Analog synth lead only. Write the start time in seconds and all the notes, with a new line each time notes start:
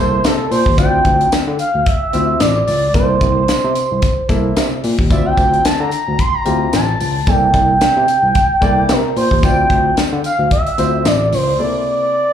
Already playing: C5
0.25 A4
0.51 C5
0.78 G5
1.59 F5
1.86 E5
2.40 D5
2.67 D5
2.95 C5
5.11 E5
5.25 G5
5.65 A5
5.80 A#5
6.19 C6
6.34 A#5
6.74 A5
7.28 G5
8.91 A#4
9.17 C5
9.45 G5
10.25 F5
10.52 E5
11.07 D5
11.34 C5
11.62 D5